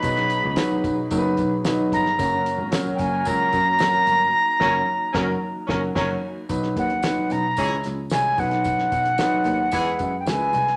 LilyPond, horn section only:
\new Staff \with { instrumentName = "Horn section" } { \time 4/4 \key b \major \tempo 4 = 111 <fis dis' b'>2.~ <fis dis' b'>8 r8 | <fis cis' ais'>1 | r8 <fis cis' ais'>8 r8 <fis cis' ais'>8 r8 <fis cis' ais'>8 <fis cis' ais'>8 r8 | r2 <e cis' gis'>8 r4. |
r2 <e b gis'>8 r4. | }